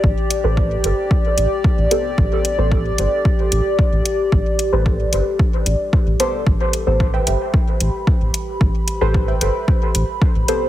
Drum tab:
HH |-x-x-x-x|-x-x-x-x|-x-x-x-x|-x-x-x-x|
BD |o-o-o-o-|o-o-o-o-|o-o-o-o-|o-o-o-o-|

HH |-x-x-x-x|
BD |o-o-o-o-|